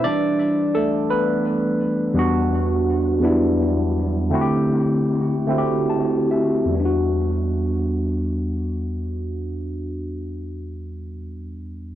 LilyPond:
<<
  \new Staff \with { instrumentName = "Tine electric piano" } { \time 6/8 \key e \minor \tempo 4. = 50 <d' d''>4 <a a'>8 <b b'>4 r8 | r2. | r2 a''8 e''8 | r2. |
r2. | }
  \new Staff \with { instrumentName = "Tine electric piano" } { \time 6/8 \key e \minor <e g>8 r2 r8 | <e, g b d' fis'>4 r8 <e, fis g b d' e'>4 r8 | <d a c' e' fis' g'>4 r8 <d a c' e' fis' g'>4 r8 | <e, g b d' fis'>2.~ |
<e, g b d' fis'>2. | }
>>